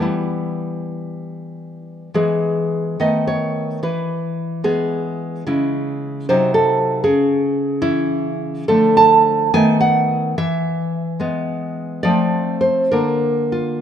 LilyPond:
\new Staff \with { instrumentName = "Nylon-string guitar" } { \time 6/8 \key e \minor \tempo 4. = 72 << { e'2~ e'8 r8 | \key e \major gis'4. dis''8 cis''4 | b'4. gis'4. | e'4. c''8 a'4 |
gis'4. e'4. | \key e \phrygian a'8 a''4 gis''8 fis''4 | e''2. | d''4 c''8 bes'4 f'8 | } \\ { <e g b>2. | <e gis b>4. <dis a b>4. | e4. <gis b>4. | <cis gis cis'>4. <c ges ees'>4. |
cis4. <e cis'>4. | <d f a>4. <dis a b>4. | e4. <gis b>4. | <f a c'>4. <d bes d'>4. | } >> }